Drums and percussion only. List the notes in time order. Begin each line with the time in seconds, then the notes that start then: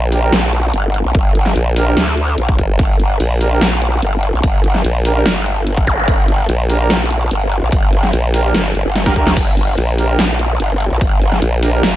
0.12 open hi-hat
0.32 snare, closed hi-hat
0.53 closed hi-hat
0.74 closed hi-hat
0.94 closed hi-hat
1.15 kick, closed hi-hat
1.35 closed hi-hat
1.46 snare
1.56 closed hi-hat
1.76 open hi-hat
1.97 snare, closed hi-hat
2.17 closed hi-hat
2.38 closed hi-hat
2.49 kick
2.59 kick, closed hi-hat
2.79 kick, closed hi-hat, ride
3.00 closed hi-hat
3.20 closed hi-hat, ride
3.41 open hi-hat
3.61 snare, closed hi-hat, ride
3.82 closed hi-hat
4.02 closed hi-hat, ride
4.23 closed hi-hat
4.43 kick, closed hi-hat, ride
4.64 closed hi-hat
4.75 snare
4.85 closed hi-hat, ride
5.05 open hi-hat
5.26 snare, closed hi-hat, ride
5.46 closed hi-hat
5.67 closed hi-hat, ride
5.77 kick
5.87 kick, closed hi-hat
6.08 kick, closed hi-hat, ride
6.28 closed hi-hat
6.49 closed hi-hat, ride
6.70 open hi-hat
6.90 snare, closed hi-hat, ride
7.11 closed hi-hat
7.31 closed hi-hat, ride
7.52 closed hi-hat
7.72 kick, closed hi-hat, ride
7.93 closed hi-hat
8.03 snare
8.13 closed hi-hat, ride
8.34 open hi-hat
8.54 snare, closed hi-hat, ride
8.75 closed hi-hat
8.96 snare, closed hi-hat, ride
9.06 kick, snare
9.16 kick, closed hi-hat
9.27 snare
9.37 kick, closed hi-hat, crash, ride
9.57 closed hi-hat
9.78 closed hi-hat, ride
9.98 open hi-hat
10.19 snare, closed hi-hat, ride
10.39 closed hi-hat
10.60 closed hi-hat, ride
10.80 closed hi-hat
11.01 kick, closed hi-hat, ride
11.22 closed hi-hat
11.32 snare
11.42 closed hi-hat, ride
11.63 open hi-hat
11.83 snare, closed hi-hat, ride